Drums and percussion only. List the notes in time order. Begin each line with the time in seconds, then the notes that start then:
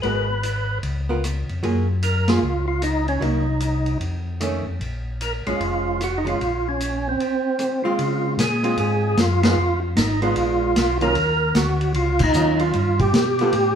0.03 ride
0.43 hi-hat pedal, ride
0.83 ride
1.24 cross-stick, hi-hat pedal, ride
1.49 ride
1.63 ride
2.02 hi-hat pedal, ride
2.28 snare, ride
2.82 cross-stick, hi-hat pedal, ride
3.08 ride
3.22 ride
3.60 hi-hat pedal, ride
3.86 ride
4.01 ride
4.41 cross-stick, hi-hat pedal, ride
4.81 ride
5.21 hi-hat pedal, ride
5.46 ride
5.61 ride
6.01 cross-stick, hi-hat pedal, ride
6.27 ride
6.41 ride
6.80 hi-hat pedal, ride
7.20 ride
7.59 cross-stick, hi-hat pedal, ride
7.99 ride
8.39 snare, hi-hat pedal, ride
8.64 ride
8.77 ride
9.17 snare, hi-hat pedal, ride
9.43 snare, ride
9.97 snare, hi-hat pedal, ride
10.22 ride
10.36 ride
10.76 snare, hi-hat pedal, ride
11.01 ride
11.15 ride
11.55 snare, hi-hat pedal, ride
11.81 ride
11.94 ride
12.19 kick, crash
12.33 hi-hat pedal
12.59 ride
12.73 ride
12.99 kick, ride
13.14 snare, hi-hat pedal, ride
13.39 ride
13.53 ride